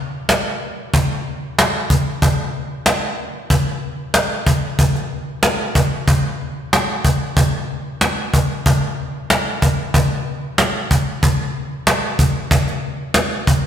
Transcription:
0.29 cajon slap loud
0.94 cajon bass loud
1.59 cajon slap loud
1.90 cajon bass medium
2.22 cajon bass loud
2.86 cajon slap loud
3.50 cajon bass loud
4.14 cajon slap loud
4.47 cajon bass medium
4.79 cajon bass loud
4.95 cajon slap soft
5.43 cajon slap loud
5.75 cajon bass medium
6.08 cajon bass loud
6.73 cajon slap loud
7.05 cajon bass medium
7.37 cajon bass loud
8.01 cajon slap loud
8.34 cajon bass medium
8.66 cajon bass loud
9.30 cajon slap loud
9.62 cajon bass medium
9.94 cajon bass loud
10.58 cajon slap loud
10.91 cajon bass medium
11.23 cajon bass loud
11.87 cajon slap loud
12.19 cajon bass medium
12.51 cajon bass loud
12.68 cajon slap soft
13.14 cajon slap loud
13.47 cajon bass medium

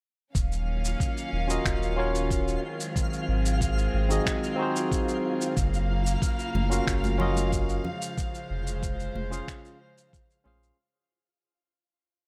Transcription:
0.34 0.95 D#1 medium
0.34 5.53 D#3 medium
0.34 7.81 F#3 medium
0.34 2.61 A#3 medium
0.34 2.61 C#4 medium
0.34 10.80 F4 medium
0.34 10.80 F5 medium
0.34 2.61 F5 medium
0.34 kick medium
0.34 shaker soft
0.52 shaker soft
0.85 shaker medium
1.00 kick medium
1.00 shaker soft
1.17 shaker soft
1.33 1.58 D#1 medium
1.47 1.93 C#4 medium
1.47 1.94 F4 medium
1.47 1.94 F#4 medium
1.47 1.95 A#4 medium
1.47 1.95 D#5 medium
1.47 shaker medium
1.65 2.58 D#1 medium
1.65 finger snap medium
1.65 kick medium
1.65 shaker soft
1.83 shaker soft
1.96 2.60 C#4 medium
1.96 2.61 F4 medium
1.96 2.61 F#4 medium
1.96 2.62 A#4 medium
1.96 2.62 C#5 medium
2.15 shaker medium
2.30 kick medium
2.30 shaker medium
2.48 shaker soft
2.63 5.54 G#3 medium
2.63 5.54 C4 medium
2.63 5.54 G#4 medium
2.80 shaker medium
2.96 kick loud
2.96 shaker medium
3.13 shaker soft
3.28 3.88 G#1 medium
3.46 shaker medium
3.61 kick medium
3.61 shaker soft
3.78 shaker soft
3.94 4.19 G#1 medium
4.09 4.54 C4 medium
4.09 4.55 D#4 medium
4.09 4.55 F#4 medium
4.09 4.56 G#4 medium
4.09 4.56 D#5 medium
4.09 shaker medium
4.26 finger snap medium
4.26 kick medium
4.26 shaker medium
4.43 shaker soft
4.56 5.53 C4 medium
4.56 5.54 D#4 medium
4.56 5.55 F#4 medium
4.61 5.56 G#4 medium
4.61 5.57 C5 medium
4.76 shaker medium
4.92 kick loud
4.92 shaker medium
5.08 shaker soft
5.41 shaker medium
5.56 6.16 F#1 medium
5.56 7.83 C#3 medium
5.56 7.83 A#3 medium
5.56 10.74 F5 medium
5.56 kick loud
5.56 shaker medium
5.74 shaker soft
6.06 shaker medium
6.22 kick loud
6.22 shaker medium
6.39 shaker soft
6.54 6.80 F#1 medium
6.54 high conga medium
6.54 low conga medium
6.70 7.15 C#4 medium
6.70 7.16 F4 medium
6.70 7.16 F#4 medium
6.70 7.16 A#4 medium
6.70 7.17 F5 medium
6.70 shaker medium
6.87 7.79 F#1 medium
6.87 finger snap medium
6.87 kick loud
6.87 shaker medium
7.04 high conga medium
7.04 shaker soft
7.18 7.82 C#4 medium
7.18 7.83 F4 medium
7.18 7.83 F#4 medium
7.18 7.84 A#4 medium
7.18 7.84 D#5 medium
7.18 low conga medium
7.37 high conga medium
7.37 shaker medium
7.52 kick medium
7.52 shaker medium
7.69 shaker soft
7.85 10.75 C#3 medium
7.85 10.75 F3 medium
7.85 10.75 G#3 medium
7.85 10.75 C5 medium
7.85 low conga medium
8.02 shaker medium
8.18 kick loud
8.18 shaker medium
8.35 shaker soft
8.50 9.10 F1 medium
8.67 shaker medium
8.83 kick loud
8.83 shaker medium
9.00 shaker soft
9.15 9.41 F1 loud
9.15 high conga medium
9.30 9.76 C#4 medium
9.30 9.76 F4 medium
9.30 9.77 G#4 medium
9.30 9.77 C5 medium
9.30 9.78 F5 medium
9.30 shaker medium
9.48 finger snap medium
9.48 kick loud
9.48 shaker medium
9.65 shaker soft
9.98 shaker medium
10.13 kick loud
10.13 shaker medium
10.31 shaker soft
10.44 10.71 A#1 medium
10.44 10.76 C#4 medium
10.44 10.76 F4 medium
10.44 10.77 G#4 medium
10.44 10.77 C5 medium
10.44 10.77 F5 loud
10.44 high conga medium
10.63 shaker medium

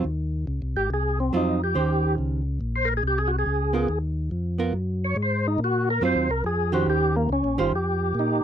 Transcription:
0.04 0.46 D#2 medium
0.47 0.61 C#2 medium
0.62 0.76 C2 medium
0.77 0.89 G#1 medium
0.77 0.90 G4 medium
0.90 1.31 C2 medium
0.90 1.19 G#4 medium
1.20 1.33 C4 medium
1.33 1.74 F2 medium
1.33 1.58 F#3 medium
1.33 1.58 C4 medium
1.33 1.62 D#4 medium
1.33 1.59 F4 medium
1.64 2.15 G4 medium
1.75 2.17 D#2 medium
1.75 2.40 D#3 medium
1.75 2.40 C#4 medium
1.75 2.41 G4 medium
1.75 2.41 C5 medium
2.18 2.59 C#2 medium
2.61 3.02 A#1 medium
2.76 2.89 C5 medium
2.85 2.94 A#4 loud
2.97 3.04 G#4 medium
3.03 3.45 C2 medium
3.07 3.19 G4 medium
3.18 3.31 G#4 medium
3.28 3.36 F#4 medium
3.39 3.99 G#4 medium
3.46 3.87 C#2 medium
3.73 3.87 B3 medium
3.73 3.87 F4 medium
3.73 3.87 A#4 medium
3.89 4.30 D#2 medium
4.31 4.73 F2 medium
4.58 4.72 B3 medium
4.58 4.72 F4 medium
4.58 4.72 A#4 medium
4.73 5.15 F#2 medium
5.04 5.17 C#5 medium
5.16 5.58 G#2 medium
5.22 5.47 C5 medium
5.48 5.60 D#4 medium
5.58 6.00 A#2 medium
5.64 5.89 F#4 medium
5.90 6.03 A#4 loud
6.01 6.15 F#2 medium
6.01 6.27 F#3 medium
6.01 6.27 C4 medium
6.01 6.28 F4 medium
6.01 6.31 C5 loud
6.15 6.30 D#2 medium
6.29 6.43 C2 medium
6.29 6.44 A#4 loud
6.44 6.86 F2 medium
6.44 6.73 G#4 loud
6.72 7.27 D#3 medium
6.72 7.27 C#4 medium
6.72 6.87 F#4 medium
6.72 7.27 G4 medium
6.72 7.27 C5 medium
6.86 7.28 D#2 medium
6.86 7.16 G4 loud
7.16 7.30 A#3 medium
7.29 7.43 C#2 medium
7.29 7.59 C#4 medium
7.44 7.58 A#1 medium
7.58 7.71 G1 medium
7.58 7.71 D#3 medium
7.58 7.71 C#4 medium
7.58 7.73 F4 medium
7.58 7.71 G4 medium
7.58 7.71 C5 medium
7.72 8.14 F2 medium
7.72 8.44 G4 medium
8.15 8.41 A#2 medium
8.19 8.44 D#4 medium

